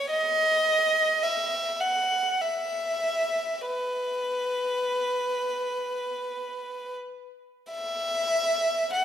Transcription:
Already playing: C#5
0.10 D#5
1.23 E5
1.80 F#5
2.41 E5
3.66 B4
7.71 E5
8.93 F#5

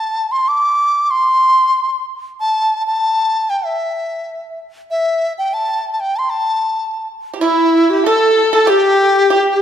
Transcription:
Already playing: A5
0.31 C6
0.48 D6
1.10 C6
2.40 A5
2.87 A5
3.50 G5
3.65 E5
4.91 E5
5.38 G5
5.54 A5
5.93 A5
6.00 G5
6.16 A5 C6
6.30 A5
7.33 G4
7.40 E4
7.90 G4
8.03 A4
8.53 A4
8.65 G4
8.70 G4
9.30 G4

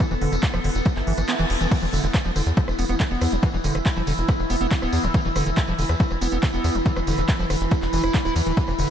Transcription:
Already playing: B3 E4 A4 B4 D6
0.00 E3, kick, cross-stick, closed hi-hat, tambourine
0.11 E1 E3, tambourine
0.21 E1 D3, open hi-hat
0.32 E1 D3, closed hi-hat, tambourine
0.43 kick, clap, closed hi-hat, tambourine
0.53 E1 F3, cross-stick, tambourine
0.64 E1 D3, open hi-hat
0.75 E1, closed hi-hat, tambourine
0.85 F3, kick, closed hi-hat, tambourine, swell
0.96 G1, clap, tambourine
1.07 G1 E3, open hi-hat
1.18 G1 E3, cross-stick, closed hi-hat, tambourine
1.28 B3, clap, closed hi-hat, tambourine
1.39 E1 E3, tambourine
1.50 E1, open hi-hat
1.61 E1 E3, closed hi-hat, tambourine
1.71 E3 E4, kick, closed hi-hat, crash, tambourine
1.82 E1 E3, cross-stick, tambourine
1.89 B4
1.93 E1 D3, open hi-hat, tambourine
2.04 E1 D3, closed hi-hat, tambourine
2.14 kick, cross-stick, clap, closed hi-hat, tambourine
2.25 E1 F3, tambourine
2.36 E1 D3, cross-stick, open hi-hat, tambourine
2.46 E2, closed hi-hat, tambourine
2.52 B5
2.57 F3, kick, closed hi-hat, tambourine
2.68 E1, cross-stick, tambourine
2.79 E1 B3, open hi-hat, tambourine
2.89 E1 B3, cross-stick, closed hi-hat, tambourine
3.00 D3, kick, clap, closed hi-hat, tambourine
3.11 E1 B3, tambourine
3.21 E2, cross-stick, open hi-hat, tambourine
3.32 E1 E3, closed hi-hat, tambourine
3.43 E3, kick, cross-stick, closed hi-hat, tambourine
3.54 E1 E3, tambourine
3.64 E1 D3, open hi-hat, tambourine
3.75 E1 D3, cross-stick, closed hi-hat, tambourine
3.86 kick, clap, closed hi-hat, tambourine
3.96 E1 F3, cross-stick, tambourine
4.07 E1 D3, open hi-hat, tambourine
4.18 E1, closed hi-hat, tambourine
4.28 F3, kick, cross-stick, closed hi-hat, tambourine
4.39 E1, tambourine
4.50 E1 B3, cross-stick, open hi-hat, tambourine
4.61 E1 B3, closed hi-hat, tambourine
4.71 D3, kick, clap, closed hi-hat, tambourine
4.82 D1 B3, cross-stick, tambourine
4.93 E2, open hi-hat, tambourine
5.04 D1 E3, cross-stick, closed hi-hat, tambourine
5.14 E3, kick, closed hi-hat, tambourine
5.25 E1 E3, tambourine
5.35 E1 D3, cross-stick, open hi-hat, tambourine
5.46 E1 D3, closed hi-hat, tambourine
5.57 kick, cross-stick, clap, closed hi-hat, tambourine
5.67 E1 F3, tambourine
5.79 E1 D3, open hi-hat, tambourine
5.89 E2, cross-stick, closed hi-hat, tambourine
5.95 E6
6.00 F3, kick, closed hi-hat, tambourine
6.11 E1, cross-stick, tambourine
6.21 E1 B3, open hi-hat, tambourine
6.32 E1 B3, closed hi-hat, tambourine
6.43 D3, kick, cross-stick, clap, closed hi-hat, tambourine
6.53 E1 B3, tambourine
6.64 E2, cross-stick, open hi-hat, tambourine
6.75 E1 E3, closed hi-hat, tambourine
6.86 E3, kick, closed hi-hat, tambourine
6.96 E1 E3, cross-stick, tambourine
7.07 E1 D3, open hi-hat, tambourine
7.18 E1 D3, cross-stick, closed hi-hat, tambourine
7.29 kick, clap, closed hi-hat, tambourine
7.39 E1 F3, tambourine
7.50 E1 D3, cross-stick, open hi-hat, tambourine
7.61 E1, closed hi-hat, tambourine
7.71 F3, kick, cross-stick, closed hi-hat, tambourine
7.82 E1, clap, tambourine
7.93 E1 E3, open hi-hat, tambourine
8.03 E1 E4, cross-stick, closed hi-hat, tambourine
8.14 G3, kick, clap, closed hi-hat, tambourine
8.25 D1 E4, cross-stick, tambourine
8.36 E2 E3, open hi-hat, tambourine
8.46 D1 E3, closed hi-hat, tambourine
8.57 E3 G3, kick, closed hi-hat, tambourine
8.67 E1 E3, cross-stick, tambourine
8.79 E1 D3, open hi-hat, tambourine

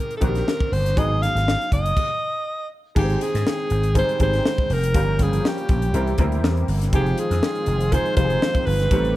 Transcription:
Already playing: D#3 C4 D4 A#4
0.00 A#4
0.11 closed hi-hat
0.17 D#3 A4
0.21 A#1 C4 D4 F#4 A#4, kick, closed hi-hat
0.28 G4
0.35 snare, closed hi-hat
0.48 snare
0.60 kick
0.72 G1 C5, open hi-hat
0.86 snare, closed hi-hat
0.96 G#1 F#3 B3 D#4 G#4 D#5, kick, closed hi-hat
1.22 F5, snare, closed hi-hat
1.35 G#1, snare, closed hi-hat
1.48 snare
1.61 closed hi-hat
1.72 F#1 D#5, kick, closed hi-hat
1.86 closed hi-hat
1.97 kick, crash
2.95 G#1 D#3 G#3 A#3 C4 D#4 G4 G#4 G5, kick, crash
3.02 C4
3.10 closed hi-hat
3.21 G#4, snare, closed hi-hat
3.35 G#2, snare, closed hi-hat
3.47 snare
3.70 G#1, closed hi-hat
3.83 closed hi-hat
3.95 G3 C4 D#4 G#4 C5, kick, closed hi-hat
4.09 closed hi-hat
4.19 G#1 C4 D#4 G4 G#4 C5, kick, closed hi-hat
4.33 snare, closed hi-hat
4.45 snare
4.58 kick
4.70 F1 A#4, open hi-hat
4.83 closed hi-hat
4.94 G1 F3 G3 A#3 C#4 F4 A#4, kick, closed hi-hat
5.19 G1 G#4, kick, snare, closed hi-hat
5.33 closed hi-hat
5.45 G4, snare
5.58 closed hi-hat
5.69 A#1, kick, closed hi-hat
5.82 closed hi-hat
5.94 C2 E3 G3 C4 E4 G4 A#4, closed hi-hat
6.07 closed hi-hat
6.18 D2 G3 C4 E4 A#4, kick, closed hi-hat
6.32 closed hi-hat
6.44 E2, snare
6.57 closed hi-hat
6.68 G1, open hi-hat
6.82 snare, closed hi-hat
6.93 F1 D#3 F3 G#3 C4 D#4 F4 G4 G#4, kick, closed hi-hat
7.06 closed hi-hat
7.18 G#4, closed hi-hat
7.31 F2, snare, closed hi-hat
7.43 snare
7.55 closed hi-hat
7.66 F1, closed hi-hat
7.80 closed hi-hat
7.92 F3 C4 D#4 G#4 C5, kick, closed hi-hat
8.06 closed hi-hat
8.17 F1 F3 C4 D#4 G4 C5, kick, closed hi-hat
8.24 G#4
8.30 closed hi-hat
8.42 snare
8.55 kick, closed hi-hat
8.66 G1 B4, open hi-hat
8.80 snare, closed hi-hat
8.91 A1 G3 A3 C4 D#4 G4 A4, kick, closed hi-hat
9.05 closed hi-hat

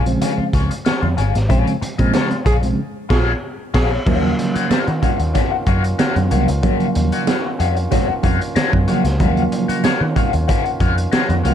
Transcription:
Already playing: A#1
0.06 C#3 F3 G#3 C4, muted clean electric guitar stroke, closed hi-hat
0.21 F4 G#4 C#5, closed hi-hat, muted conga
0.38 muted picked electric bass stroke, muted clean electric guitar stroke
0.53 C#2 F4 G#4 C#5, kick, closed hi-hat, muted conga
0.70 muted clean electric guitar stroke, closed hi-hat
0.85 F4 G#4 C#5, snare, closed hi-hat, high conga
1.02 F2, muted clean electric guitar stroke, high conga
1.17 G1 F4 G#4 C#5, closed hi-hat
1.34 G#1, muted clean electric guitar stroke, snare, closed hi-hat
1.49 A#1 C#3 F3 G#3 C4 F4 G#4 C#5, kick, closed hi-hat, muted conga
1.67 closed hi-hat
1.81 muted clean electric guitar stroke, muted picked electric bass stroke, closed hi-hat, muted conga
1.98 A#2 C#3 F3 G#3 C4 F4 G#4 D#5, kick, closed hi-hat
2.13 F4 G#4 C#5, snare, closed hi-hat, high conga
2.31 muted clean electric guitar stroke, closed hi-hat
2.45 A#1 F4 G#4 C#5, kick, closed hi-hat
2.62 C3 F3 G#3 C4, muted clean electric guitar stroke, closed hi-hat
2.69 C#3
3.09 A#1 F4 G#4 C#5, kick, snare, crash
3.74 A#1 F4 G#4 C#5, kick, snare, crash
4.06 D#2 C#3 D#3 F3 F#3 A#3 C#4 F4 F#4 C#5 F5, kick, crash, muted conga
4.38 muted clean electric guitar stroke, closed hi-hat, muted conga
4.54 F#4 C#5 F#5, muted picked electric bass stroke, closed hi-hat
4.70 F#4 C#5 F5, muted picked electric bass stroke, snare, closed hi-hat, high conga
4.87 D#3, muted clean electric guitar stroke, closed hi-hat
5.02 F#4 C#5 F5, kick, closed hi-hat, low conga
5.19 D#2, muted clean electric guitar stroke, closed hi-hat
5.34 F#4 C#5 F5, kick, snare, closed hi-hat, muted conga
5.51 muted clean electric guitar stroke
5.67 F#2 F#4 C#5 F5, kick, closed hi-hat, muted conga
5.84 muted clean electric guitar stroke, closed hi-hat
5.99 F#4 C#5 F5, snare, closed hi-hat, high conga
6.16 F#2, muted clean electric guitar stroke, closed hi-hat, high conga
6.31 C2 C#3 F3 F#3 A#3 F#4 C#5 F5, closed hi-hat
6.48 C#2, muted clean electric guitar stroke, closed hi-hat
6.63 C#3 F3 F#3 A#3 F#4 C#5 F5, kick, closed hi-hat, muted conga
6.80 closed hi-hat
6.95 D#2, muted clean electric guitar stroke, closed hi-hat, muted conga
7.12 F#4 C#5 F#5, closed hi-hat
7.27 F#4 C#5 F5, snare, closed hi-hat, high conga
7.44 muted clean electric guitar stroke
7.59 F2 F#4 C#5 F5, closed hi-hat
7.76 muted clean electric guitar stroke, closed hi-hat
7.91 F#4 C#5 F5, kick, snare, closed hi-hat, muted conga, low conga
8.08 muted clean electric guitar stroke, muted picked electric bass stroke
8.23 F2 F#4 C#5 F5, kick, closed hi-hat, muted conga, low conga
8.41 muted clean electric guitar stroke, closed hi-hat
8.56 F#4 C#5 F5, muted picked electric bass stroke, snare, closed hi-hat, high conga
8.73 F#2, muted clean electric guitar stroke, kick, high conga
8.88 C#3 F3 F#3 A#3 F#4 C#5 F5, closed hi-hat
9.04 C#2, muted clean electric guitar stroke, snare, closed hi-hat
9.20 D#2 C#3 F3 F#3 G#3 F#4 C#5 F5, kick, closed hi-hat, muted conga
9.28 A#3
9.37 closed hi-hat
9.52 muted clean electric guitar stroke, closed hi-hat
9.68 F#4 C#5 F#5, muted picked electric bass stroke, closed hi-hat
9.84 F#4 C#5 F5, muted picked electric bass stroke, snare, closed hi-hat, high conga
10.01 D#3, muted clean electric guitar stroke
10.16 F#4 C#5 F5, kick, closed hi-hat, low conga
10.33 D#2, muted clean electric guitar stroke, closed hi-hat
10.48 F#4 C#5 F5, kick, closed hi-hat, muted conga
10.65 muted clean electric guitar stroke, closed hi-hat
10.80 F2 F#4 C#5 F5, kick, closed hi-hat, muted conga
10.97 muted clean electric guitar stroke, closed hi-hat
11.11 F#4 C#5 F5, snare, closed hi-hat, high conga
11.28 F2, muted clean electric guitar stroke, closed hi-hat, high conga
11.43 C2 C#3 F3 F#3 A#3 F#4 C#5 F5, closed hi-hat

